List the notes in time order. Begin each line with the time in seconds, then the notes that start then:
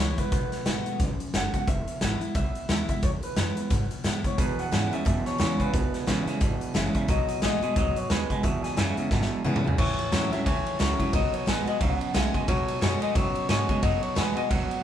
Already playing: B2 C#5
0.00 C#2 E3 G#3 B3 E4
0.18 B3 E4 B4, kick, closed hi-hat
0.32 B1 B2, kick, closed hi-hat
0.52 snare, closed hi-hat
0.66 G#1 D#3 A3 B3 F#4, snare, closed hi-hat
0.86 closed hi-hat
1.00 A1 F#2, kick, closed hi-hat
1.20 muted upright bass stroke, closed hi-hat
1.34 F#1 D#3 A3 B3 F#4 F#5, snare, closed hi-hat
1.54 B3 F#4 F#5, muted upright bass stroke, kick, closed hi-hat
1.68 E1 E2 E5, kick, closed hi-hat
1.88 muted upright bass stroke, closed hi-hat
2.01 G#1 E3 G#3 B3 E4, snare, closed hi-hat
2.21 B3 E4, muted upright bass stroke, closed hi-hat
2.35 B1 B2 E5, kick, closed hi-hat
2.55 muted upright bass stroke, closed hi-hat
2.68 D#2 E3 G#3 B3 E4, snare, closed hi-hat
2.89 B3 E4 E5, kick, closed hi-hat
3.03 E2 C#5, kick, closed hi-hat
3.23 B4, muted upright bass stroke, closed hi-hat
3.36 F#2 E3 G#3 B3 E4, snare, closed hi-hat
3.57 B3 E4, muted upright bass stroke, closed hi-hat
3.70 G#2 B2, kick, snare, closed hi-hat
3.91 muted upright bass stroke, closed hi-hat
4.04 A2 E3 G#3 B3 E4, snare, closed hi-hat
4.24 B3 E4 C#5, muted upright bass stroke, kick, closed hi-hat
4.38 E2 B2 B4, kick, closed hi-hat
4.58 F#5, muted upright bass stroke, closed hi-hat
4.71 E2 G#2 C#3 E3 G#3 B3 E4, snare, closed hi-hat
4.91 E2 C#3 B3 E4 E5, muted upright bass stroke, closed hi-hat
5.05 E2 F#2 B2 E5, kick, closed hi-hat
5.26 C#5, muted upright bass stroke, snare, closed hi-hat
5.38 E2 C#3 E3 G#3 B3 E4, snare, closed hi-hat
5.60 E2 C#3 B4, muted upright bass stroke, kick, closed hi-hat
5.73 B1 E2 B2, kick, closed hi-hat
5.94 muted upright bass stroke, snare, closed hi-hat
6.07 A1 E2 C#3 E3 G#3 B3 E4, snare, closed hi-hat
6.26 E2 C#3 B3 E4, muted upright bass stroke, snare, closed hi-hat
6.41 G#1 E2 B2, kick, closed hi-hat
6.61 muted upright bass stroke, closed hi-hat
6.74 F#1 E2 C#3 E3 G#3 B3 E4 E5, snare, closed hi-hat
6.94 E2 C#3 B3 E4 E5, muted upright bass stroke, kick, closed hi-hat
7.08 B1 B2 F#3 D#5, kick, closed hi-hat
7.29 muted upright bass stroke, closed hi-hat
7.42 A1 B2 D#3 G#3 A3 B3 F#4 D#5, snare, closed hi-hat
7.61 B2 G#3 B3 F#4, muted upright bass stroke, closed hi-hat
7.76 C#2 G#2 B2 F#3 D#5, kick, closed hi-hat
7.96 C#5, muted upright bass stroke, closed hi-hat
8.10 D#2 F#2 B2 G#3 B4, snare, closed hi-hat
8.30 B2 G#3, kick, closed hi-hat
8.43 E2 B2 E5, kick, closed hi-hat
8.63 G#5, muted upright bass stroke, snare, closed hi-hat
8.77 E2 F#2 C#3 E3 G#3 B3 E4 E5, snare, closed hi-hat
8.97 E2 C#3 B3 E4, muted upright bass stroke, closed hi-hat
9.11 E2 G#2 B2, kick, snare
9.22 snare
9.31 muted upright bass stroke
9.44 E2 B2 C#3 E3 G#3 B3 E4, mid tom
9.56 mid tom
9.64 E2 C#3 B3 E4, muted upright bass stroke, floor tom
9.78 A2 E3 C#5, kick, crash
9.98 muted upright bass stroke, ride
10.12 E2 A2 E3 F#3 A3 C#4 E4 C#5, snare, ride
10.32 A2 F#3 C#4 E4 E5, muted upright bass stroke, snare, ride
10.46 D#2 A2 E3 C#5, kick, ride
10.66 muted upright bass stroke, ride
10.79 C#2 A2 E3 F#3 A3 C#4 E4 C#5, snare, ride
10.99 A2 F#3 C#4 E4, kick, ride
11.13 B1 B2 F#3 D#5, kick, ride
11.33 C#5, muted upright bass stroke, ride
11.46 A1 B2 D#3 G#3 A3 B3 F#4 B4, snare, ride
11.66 B2 G#3 B3 F#4 D#5, muted upright bass stroke, ride
11.81 C#2 F#2 B2 F#3 F#5, kick, ride
12.00 muted upright bass stroke, ride
12.14 B1 B2 D#3 G#3 A3 B3 F#4, snare, ride
12.34 B2 G#3 B3 F#4, kick, ride
12.48 D#2 B2 F#3 C#5, kick, ride
12.68 muted upright bass stroke, ride
12.81 F#2 B2 D#3 G#3 A3 B3 F#4 C#5, snare, ride
13.02 B2 G#3 D#5, muted upright bass stroke, ride
13.15 F#2 A2 B2 F#3 C#5, kick, ride
13.35 muted upright bass stroke, ride
13.49 G#2 B2 D#3 G#3 A3 B3 F#4 C#5, snare, ride
13.68 B2 G#3 B3 F#4, kick, ride
13.83 F#2 B2 F#3 D#5, kick, ride
14.02 C#5, muted upright bass stroke, ride
14.15 E2 B2 D#3 G#3 A3 B3 F#4 B4, snare, ride
14.37 B2 G#3 B3 F#4 D#5, muted upright bass stroke, ride
14.50 D#2 G#2 B2 F#3 F#5, kick, ride
14.71 ride